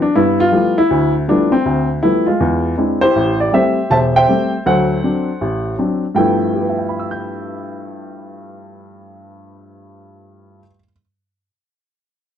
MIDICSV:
0, 0, Header, 1, 2, 480
1, 0, Start_track
1, 0, Tempo, 374766
1, 201, Time_signature, 4, 2, 24, 8
1, 15845, End_track
2, 0, Start_track
2, 0, Title_t, "Grand piano"
2, 0, Program_c, 0, 0
2, 0, Note_on_c, 0, 66, 73
2, 26, Note_on_c, 0, 62, 82
2, 146, Note_off_c, 0, 66, 0
2, 198, Note_on_c, 0, 64, 89
2, 200, Note_on_c, 0, 59, 73
2, 203, Note_off_c, 0, 62, 0
2, 203, Note_on_c, 0, 43, 78
2, 489, Note_off_c, 0, 64, 0
2, 514, Note_on_c, 0, 65, 102
2, 615, Note_off_c, 0, 59, 0
2, 617, Note_off_c, 0, 43, 0
2, 663, Note_on_c, 0, 53, 54
2, 668, Note_on_c, 0, 57, 45
2, 671, Note_on_c, 0, 55, 52
2, 674, Note_on_c, 0, 59, 49
2, 678, Note_on_c, 0, 64, 53
2, 959, Note_off_c, 0, 65, 0
2, 979, Note_off_c, 0, 64, 0
2, 998, Note_on_c, 0, 64, 100
2, 1000, Note_off_c, 0, 53, 0
2, 1002, Note_off_c, 0, 57, 0
2, 1004, Note_off_c, 0, 55, 0
2, 1005, Note_off_c, 0, 59, 0
2, 1160, Note_on_c, 0, 38, 77
2, 1441, Note_off_c, 0, 64, 0
2, 1575, Note_off_c, 0, 38, 0
2, 1640, Note_on_c, 0, 53, 54
2, 1645, Note_on_c, 0, 57, 48
2, 1646, Note_on_c, 0, 55, 48
2, 1650, Note_on_c, 0, 59, 45
2, 1652, Note_on_c, 0, 62, 88
2, 1653, Note_on_c, 0, 64, 59
2, 1936, Note_off_c, 0, 62, 0
2, 1947, Note_on_c, 0, 60, 88
2, 1968, Note_off_c, 0, 53, 0
2, 1971, Note_off_c, 0, 55, 0
2, 1971, Note_off_c, 0, 57, 0
2, 1973, Note_off_c, 0, 59, 0
2, 1975, Note_off_c, 0, 64, 0
2, 2119, Note_on_c, 0, 38, 74
2, 2395, Note_off_c, 0, 60, 0
2, 2534, Note_off_c, 0, 38, 0
2, 2595, Note_on_c, 0, 64, 85
2, 2601, Note_on_c, 0, 53, 51
2, 2603, Note_on_c, 0, 57, 47
2, 2604, Note_on_c, 0, 55, 47
2, 2605, Note_on_c, 0, 59, 51
2, 2886, Note_off_c, 0, 64, 0
2, 2899, Note_on_c, 0, 65, 75
2, 2912, Note_on_c, 0, 56, 56
2, 2928, Note_off_c, 0, 53, 0
2, 2929, Note_off_c, 0, 55, 0
2, 2929, Note_off_c, 0, 57, 0
2, 2930, Note_off_c, 0, 59, 0
2, 3078, Note_on_c, 0, 40, 81
2, 3493, Note_off_c, 0, 40, 0
2, 3507, Note_off_c, 0, 65, 0
2, 3536, Note_off_c, 0, 56, 0
2, 3555, Note_on_c, 0, 56, 47
2, 3558, Note_on_c, 0, 60, 49
2, 3562, Note_on_c, 0, 62, 47
2, 3565, Note_on_c, 0, 64, 54
2, 3857, Note_off_c, 0, 64, 0
2, 3860, Note_on_c, 0, 72, 103
2, 3876, Note_on_c, 0, 64, 66
2, 3877, Note_on_c, 0, 67, 62
2, 3885, Note_off_c, 0, 56, 0
2, 3886, Note_off_c, 0, 60, 0
2, 3888, Note_off_c, 0, 62, 0
2, 4047, Note_on_c, 0, 33, 71
2, 4310, Note_off_c, 0, 72, 0
2, 4359, Note_on_c, 0, 74, 80
2, 4457, Note_off_c, 0, 33, 0
2, 4514, Note_on_c, 0, 55, 51
2, 4518, Note_on_c, 0, 57, 43
2, 4520, Note_off_c, 0, 67, 0
2, 4527, Note_off_c, 0, 74, 0
2, 4528, Note_on_c, 0, 60, 56
2, 4532, Note_on_c, 0, 76, 83
2, 4540, Note_on_c, 0, 67, 63
2, 4542, Note_on_c, 0, 72, 63
2, 4781, Note_off_c, 0, 64, 0
2, 4844, Note_off_c, 0, 55, 0
2, 4846, Note_off_c, 0, 57, 0
2, 4851, Note_off_c, 0, 60, 0
2, 4998, Note_off_c, 0, 72, 0
2, 4998, Note_on_c, 0, 28, 74
2, 5002, Note_off_c, 0, 76, 0
2, 5004, Note_on_c, 0, 81, 91
2, 5017, Note_on_c, 0, 72, 64
2, 5021, Note_on_c, 0, 76, 69
2, 5074, Note_off_c, 0, 81, 0
2, 5321, Note_off_c, 0, 76, 0
2, 5325, Note_off_c, 0, 72, 0
2, 5330, Note_on_c, 0, 79, 102
2, 5340, Note_on_c, 0, 76, 65
2, 5344, Note_on_c, 0, 72, 71
2, 5412, Note_off_c, 0, 28, 0
2, 5437, Note_off_c, 0, 67, 0
2, 5484, Note_on_c, 0, 55, 51
2, 5489, Note_on_c, 0, 57, 49
2, 5494, Note_on_c, 0, 60, 54
2, 5766, Note_off_c, 0, 79, 0
2, 5809, Note_off_c, 0, 55, 0
2, 5811, Note_off_c, 0, 57, 0
2, 5814, Note_off_c, 0, 60, 0
2, 5928, Note_off_c, 0, 76, 0
2, 5931, Note_off_c, 0, 72, 0
2, 5967, Note_on_c, 0, 54, 73
2, 5968, Note_on_c, 0, 38, 71
2, 5975, Note_on_c, 0, 72, 60
2, 5976, Note_on_c, 0, 78, 86
2, 5979, Note_on_c, 0, 69, 59
2, 6378, Note_off_c, 0, 38, 0
2, 6378, Note_off_c, 0, 54, 0
2, 6450, Note_on_c, 0, 54, 51
2, 6453, Note_on_c, 0, 60, 45
2, 6459, Note_on_c, 0, 62, 51
2, 6772, Note_off_c, 0, 54, 0
2, 6773, Note_off_c, 0, 60, 0
2, 6776, Note_off_c, 0, 62, 0
2, 6932, Note_on_c, 0, 33, 69
2, 7340, Note_off_c, 0, 33, 0
2, 7355, Note_off_c, 0, 72, 0
2, 7356, Note_off_c, 0, 78, 0
2, 7357, Note_off_c, 0, 69, 0
2, 7407, Note_on_c, 0, 54, 50
2, 7412, Note_on_c, 0, 60, 43
2, 7422, Note_on_c, 0, 62, 55
2, 7731, Note_off_c, 0, 54, 0
2, 7733, Note_off_c, 0, 60, 0
2, 7738, Note_off_c, 0, 62, 0
2, 7872, Note_on_c, 0, 43, 62
2, 7882, Note_on_c, 0, 53, 58
2, 7888, Note_on_c, 0, 57, 62
2, 7888, Note_on_c, 0, 79, 75
2, 7906, Note_on_c, 0, 59, 60
2, 7909, Note_on_c, 0, 64, 69
2, 8372, Note_on_c, 0, 67, 40
2, 8469, Note_on_c, 0, 71, 41
2, 8576, Note_on_c, 0, 76, 40
2, 8673, Note_off_c, 0, 79, 0
2, 8692, Note_on_c, 0, 79, 36
2, 8822, Note_on_c, 0, 83, 35
2, 8959, Note_on_c, 0, 88, 33
2, 9108, Note_on_c, 0, 91, 31
2, 13556, Note_off_c, 0, 43, 0
2, 13566, Note_off_c, 0, 53, 0
2, 13573, Note_off_c, 0, 57, 0
2, 13590, Note_off_c, 0, 59, 0
2, 13594, Note_off_c, 0, 64, 0
2, 13598, Note_off_c, 0, 67, 0
2, 13646, Note_off_c, 0, 71, 0
2, 13700, Note_off_c, 0, 76, 0
2, 13758, Note_off_c, 0, 79, 0
2, 13823, Note_off_c, 0, 83, 0
2, 13891, Note_off_c, 0, 88, 0
2, 13966, Note_off_c, 0, 91, 0
2, 15845, End_track
0, 0, End_of_file